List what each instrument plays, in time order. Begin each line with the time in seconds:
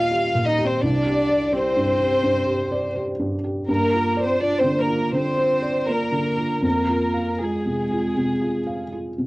Already playing: felt piano A#2 G4 D#5, cello F4, violin section F5
0.11 felt piano G4
0.35 felt piano A#2
0.46 cello D#4, violin section D#5
0.59 felt piano G4
0.64 cello C4, violin section C5
0.81 felt piano C2, cello D4, violin section D5
1.06 felt piano G4
1.29 felt piano D5
1.53 cello C4, felt piano G4, violin section C5
1.77 felt piano G2
2.00 felt piano G4
2.24 felt piano G2
2.47 felt piano G4
2.72 felt piano D5
2.96 felt piano G4
3.20 felt piano G2
3.44 felt piano G4
3.69 felt piano G2, cello A#3, violin section A#4
3.93 felt piano F4
4.17 felt piano D5
4.23 cello C4, violin section C5
4.40 cello D4, felt piano F4, violin section D5
4.60 felt piano D3, cello C4, violin section C5
4.77 cello A#3, violin section A#4
4.88 felt piano F4
5.12 felt piano D3, cello C4, violin section C5
5.38 felt piano F4
5.62 felt piano D5
5.86 cello A#3, felt piano F4, violin section A#4
6.12 felt piano D3
6.37 felt piano F4
6.62 felt piano F2, cello A#3, violin section A#4
6.88 felt piano F4
7.14 felt piano F5
7.40 cello G#3, felt piano F4, violin section G#4
7.66 felt piano C3
7.91 felt piano F4
8.17 felt piano C3
8.41 felt piano F4
8.67 felt piano F5
8.93 felt piano F4
9.18 felt piano C3